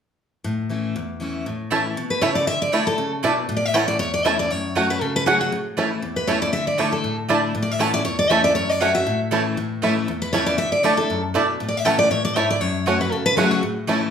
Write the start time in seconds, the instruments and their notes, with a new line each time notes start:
0.44 steel-string acoustic guitar A2
0.69 steel-string acoustic guitar E3 A3 C#4 E4
0.96 steel-string acoustic guitar E2
1.20 steel-string acoustic guitar E3 A3 C#4 E4
1.46 steel-string acoustic guitar A2
1.71 steel-string acoustic guitar E3 A3 C#4 E4, mandolin A3 E4 C#5 A5, five-string banjo A3 C#4 E4
1.97 steel-string acoustic guitar B2
2.10 steel-string acoustic guitar B4
2.21 steel-string acoustic guitar C#3 C#5, mandolin A3 E4 C#5 A5, five-string banjo A3 C#4 E4
2.35 steel-string acoustic guitar D5
2.47 steel-string acoustic guitar D3 E5
2.62 steel-string acoustic guitar D5
2.72 steel-string acoustic guitar D3 A3 D4 E4 C#5, mandolin A3 E4 D5 A5, five-string banjo A3 D4 E4
2.87 steel-string acoustic guitar A4
2.98 steel-string acoustic guitar C#3
3.23 steel-string acoustic guitar B2, mandolin A3 E4 D5 A5, five-string banjo A3 D4 E4
3.49 steel-string acoustic guitar A2
3.57 steel-string acoustic guitar D5
3.65 steel-string acoustic guitar E5
3.74 steel-string acoustic guitar E3 A3 C#4 E4 F#5, mandolin A3 E4 C#5 A5, five-string banjo A3 C#4 E4
3.88 steel-string acoustic guitar D5
3.99 steel-string acoustic guitar E2 C#5
4.14 steel-string acoustic guitar D5
4.24 steel-string acoustic guitar E3 A3 C#4 E4 E5, mandolin A3 E4 C#5 A5, five-string banjo A3 C#4 E4
4.39 steel-string acoustic guitar D5
4.51 steel-string acoustic guitar F#2 C#5
4.75 steel-string acoustic guitar F#3 A3 C#4 F#4, mandolin A3 F#4 C#5 F#5, five-string banjo A3 C#4 F#4
4.90 steel-string acoustic guitar B4
5.01 steel-string acoustic guitar C#3 A4
5.16 steel-string acoustic guitar B4
5.26 steel-string acoustic guitar F#3 A3 C#4 F#4 G#4, mandolin A3 F#4 C#5 F#5, five-string banjo A3 C#4 F#4
5.41 steel-string acoustic guitar F#4
5.52 steel-string acoustic guitar A2
5.77 steel-string acoustic guitar E3 A3 C#4 E4, mandolin A3 E4 C#5 A5, five-string banjo A3 C#4 E4
6.02 steel-string acoustic guitar E2
6.16 steel-string acoustic guitar B4
6.27 steel-string acoustic guitar E3 A3 C#4 E4 C#5, mandolin A3 E4 C#5 A5, five-string banjo A3 C#4 E4
6.42 steel-string acoustic guitar D5
6.53 steel-string acoustic guitar D3 E5
6.67 steel-string acoustic guitar D5
6.78 steel-string acoustic guitar D3 A3 D4 E4 C#5, mandolin A3 E4 D5 A5, five-string banjo A3 D4 E4
6.92 steel-string acoustic guitar A4
7.04 steel-string acoustic guitar A2
7.28 steel-string acoustic guitar D3 A3 D4 E4, mandolin A3 E4 D5 A5, five-string banjo A3 D4 E4
7.55 steel-string acoustic guitar A2
7.62 steel-string acoustic guitar D5
7.71 steel-string acoustic guitar E5
7.79 steel-string acoustic guitar E3 A3 C#4 E4 F#5, mandolin A3 E4 C#5 A5, five-string banjo A3 C#4 E4
7.93 steel-string acoustic guitar C#4 E4 D5
8.05 steel-string acoustic guitar E2 C#5
8.19 steel-string acoustic guitar D5
8.30 steel-string acoustic guitar E3 A3 C#4 E4 E5, mandolin A3 E4 C#5 A5, five-string banjo A3 C#4 E4
8.44 steel-string acoustic guitar C#4 E4 D5
8.55 steel-string acoustic guitar F#2 C#5
8.70 steel-string acoustic guitar D5
8.80 steel-string acoustic guitar F#3 A3 C#4 F#4 E5, mandolin A3 F#4 C#5 F#5, five-string banjo A3 C#4 F#4
8.94 steel-string acoustic guitar C#4 F#4 E5
9.06 steel-string acoustic guitar A2
9.31 steel-string acoustic guitar E3 A3 C#4 E4, mandolin A3 E4 C#5 A5, five-string banjo A3 C#4 E4
9.57 steel-string acoustic guitar A2
9.82 steel-string acoustic guitar E3 A3 C#4 E4, mandolin A3 E4 C#5 A5, five-string banjo A3 C#4 E4
10.08 steel-string acoustic guitar E2
10.22 steel-string acoustic guitar B4
10.33 steel-string acoustic guitar E3 A3 C#4 E4 C#5, mandolin A3 E4 C#5 A5, five-string banjo A3 C#4 E4
10.46 steel-string acoustic guitar D5
10.58 steel-string acoustic guitar D3 E5
10.72 steel-string acoustic guitar D5
10.83 steel-string acoustic guitar D3 A3 D4 E4 C#5, mandolin A3 E4 D5 A5, five-string banjo A3 D4 E4
10.97 steel-string acoustic guitar D4 E4 A4
11.10 steel-string acoustic guitar F#2
11.34 steel-string acoustic guitar B2, mandolin A3 E4 D5 A5, five-string banjo A3 D4 E4
11.60 steel-string acoustic guitar A2
11.69 steel-string acoustic guitar D5
11.77 steel-string acoustic guitar E5
11.85 steel-string acoustic guitar E3 A3 C#4 E4 F#5, mandolin A3 E4 C#5 A5, five-string banjo A3 C#4 E4
11.99 steel-string acoustic guitar D5
12.10 steel-string acoustic guitar A2 C#5
12.25 steel-string acoustic guitar D5
12.36 steel-string acoustic guitar G#2 E5, mandolin A3 E4 C#5 A5, five-string banjo A3 C#4 E4
12.50 steel-string acoustic guitar D5
12.61 steel-string acoustic guitar F#2 C#5
12.86 steel-string acoustic guitar F#3 A3 C#4 F#4, mandolin A3 F#4 C#5 F#5, five-string banjo A3 C#4 F#4
13.01 steel-string acoustic guitar C#4 F#4 B4
13.12 steel-string acoustic guitar C#3 A4
13.26 steel-string acoustic guitar B4
13.37 steel-string acoustic guitar F#3 A3 C#4 F#4 G#4, mandolin A3 F#4 C#5 F#5, five-string banjo A3 C#4 F#4
13.51 steel-string acoustic guitar F#4
13.63 steel-string acoustic guitar A2
13.87 steel-string acoustic guitar E3 A3 C#4 E4, mandolin A3 E4 C#5 A5, five-string banjo A3 C#4 E4